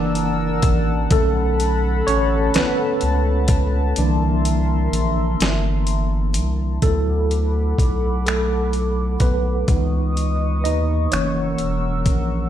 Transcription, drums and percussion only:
0.15 closed hi-hat
0.62 kick, closed hi-hat
1.11 kick, closed hi-hat
1.60 closed hi-hat
2.08 closed hi-hat
2.54 snare, closed hi-hat
3.01 closed hi-hat
3.48 kick, closed hi-hat
3.96 closed hi-hat
4.45 closed hi-hat
4.93 closed hi-hat
5.40 snare, closed hi-hat
5.87 closed hi-hat
6.34 closed hi-hat
6.82 kick, closed hi-hat
7.31 closed hi-hat
7.78 kick, closed hi-hat
8.27 finger snap, closed hi-hat
8.73 closed hi-hat
9.20 kick, closed hi-hat
9.68 kick, closed hi-hat
10.17 closed hi-hat
10.65 closed hi-hat
11.12 finger snap, closed hi-hat
11.58 closed hi-hat
12.06 kick, closed hi-hat

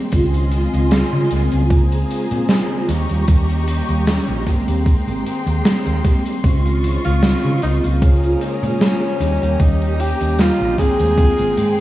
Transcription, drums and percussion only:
0.12 kick, closed hi-hat
0.34 closed hi-hat
0.52 closed hi-hat
0.74 closed hi-hat
0.91 snare, closed hi-hat
1.31 closed hi-hat
1.52 closed hi-hat
1.70 kick, closed hi-hat
1.92 closed hi-hat
2.11 closed hi-hat
2.31 closed hi-hat
2.49 snare, closed hi-hat
2.89 closed hi-hat
3.09 closed hi-hat
3.28 kick, closed hi-hat
3.49 closed hi-hat
3.68 closed hi-hat
3.89 closed hi-hat
4.07 snare, closed hi-hat
4.47 kick, closed hi-hat
4.68 closed hi-hat
4.86 kick, closed hi-hat
5.08 closed hi-hat
5.26 closed hi-hat
5.47 closed hi-hat
5.65 snare, closed hi-hat
5.87 closed hi-hat
6.04 kick, closed hi-hat
6.26 closed hi-hat
6.44 kick, closed hi-hat
6.66 closed hi-hat
6.84 closed hi-hat
7.05 closed hi-hat
7.23 snare, closed hi-hat
7.62 closed hi-hat
7.84 closed hi-hat
8.02 kick, closed hi-hat
8.23 closed hi-hat
8.41 closed hi-hat
8.63 closed hi-hat
8.81 snare, closed hi-hat
9.21 closed hi-hat
9.42 closed hi-hat
9.60 kick, closed hi-hat
9.82 closed hi-hat
10.00 closed hi-hat
10.21 closed hi-hat
10.39 snare, closed hi-hat
10.78 kick, closed hi-hat
11.00 closed hi-hat
11.18 kick, closed hi-hat
11.39 closed hi-hat
11.58 closed hi-hat

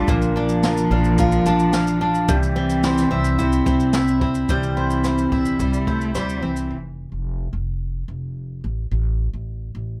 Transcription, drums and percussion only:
0.08 kick, shaker
0.22 shaker
0.49 shaker
0.63 snare, shaker
0.77 shaker
1.04 shaker
1.18 kick, shaker
1.32 shaker
1.46 shaker
1.59 shaker
1.73 snare, shaker
1.87 shaker
2.14 shaker
2.29 kick, shaker
2.43 shaker
2.70 shaker
2.83 snare, shaker
2.98 snare, shaker
3.24 shaker
3.39 kick, shaker
3.52 shaker
3.66 kick, shaker
3.80 shaker
3.93 snare, shaker
4.08 shaker
4.21 kick
4.35 shaker
4.49 kick, shaker
4.63 shaker
4.90 shaker
5.04 cross-stick, shaker
5.18 shaker
5.32 kick
5.45 shaker
5.60 kick, shaker
5.74 shaker
5.87 kick
6.01 shaker
6.15 cross-stick, shaker
6.29 shaker
6.56 shaker

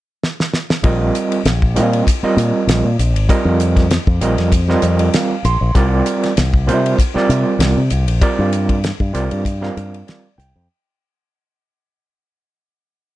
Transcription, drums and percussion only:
0.23 snare
0.40 snare
0.54 snare
0.70 snare
0.84 kick, hi-hat pedal, ride
1.15 hi-hat pedal, ride
1.32 ride
1.45 snare, hi-hat pedal, ride
1.62 kick
1.76 hi-hat pedal, ride
1.93 ride
2.07 kick, hi-hat pedal, ride
2.38 hi-hat pedal, ride
2.69 snare, hi-hat pedal, ride
2.99 hi-hat pedal, ride
3.16 ride
3.29 kick, hi-hat pedal, ride
3.60 hi-hat pedal, ride
3.76 kick, snare, ride
3.91 snare, hi-hat pedal, ride
4.07 kick
4.21 hi-hat pedal, ride
4.38 snare, ride
4.52 kick, hi-hat pedal, ride
4.70 snare
4.82 hi-hat pedal, ride
4.99 ride
5.13 snare, hi-hat pedal, ride
5.45 hi-hat pedal, ride
5.75 kick, hi-hat pedal, ride
6.06 hi-hat pedal, ride
6.23 snare, ride
6.37 snare, hi-hat pedal, ride
6.54 kick
6.69 hi-hat pedal, ride
6.86 ride
6.99 kick, hi-hat pedal, ride
7.17 snare
7.30 hi-hat pedal, ride
7.60 snare, hi-hat pedal, ride
7.90 hi-hat pedal, ride
8.08 ride
8.22 kick, hi-hat pedal, ride
8.53 hi-hat pedal, ride
8.69 kick, ride
8.84 snare, hi-hat pedal, ride
9.00 kick
9.15 hi-hat pedal, ride
9.31 ride
9.45 kick, hi-hat pedal, ride
9.63 snare
9.77 hi-hat pedal, ride
9.94 ride
10.08 snare, hi-hat pedal, ride
10.39 hi-hat pedal, ride

